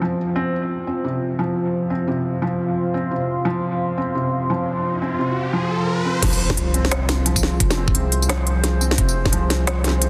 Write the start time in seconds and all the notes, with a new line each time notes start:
Already playing: F3 C4 F4 C5 G5 G#5
0.02 F3
0.36 C4
0.71 F5 C6
0.87 C4
1.04 C3
1.39 F3
1.90 C4
2.08 C3
2.42 F3
2.94 C4
3.11 C3
3.45 F3, riser
3.98 C4
4.15 C3
4.50 F3
5.02 C4
5.19 C3
5.53 F3
6.05 C4
6.22 F1 F3 F4 G#4 C5, kick, snare, closed hi-hat, crash, impact
6.33 tambourine
6.50 kick, snare
6.57 C2, closed hi-hat
6.74 C4, closed hi-hat
6.85 snare
6.91 C3, snare, closed hi-hat
7.09 snare, closed hi-hat
7.26 F3, closed hi-hat
7.36 kick, tambourine
7.43 snare
7.60 F1, kick, closed hi-hat
7.71 snare, tambourine
7.77 C4
7.88 kick
7.94 C2 C3, closed hi-hat
8.12 closed hi-hat
8.22 tambourine
8.29 F3, snare, closed hi-hat
8.47 closed hi-hat
8.64 snare, closed hi-hat
8.81 C4, tambourine
8.91 snare
8.98 F1 C3, kick, closed hi-hat
9.09 tambourine
9.25 kick, snare
9.32 C2 F3, closed hi-hat
9.50 snare, closed hi-hat
9.67 snare, closed hi-hat
9.84 C4, snare, closed hi-hat
9.88 snare
9.90 snare
10.02 C3, closed hi-hat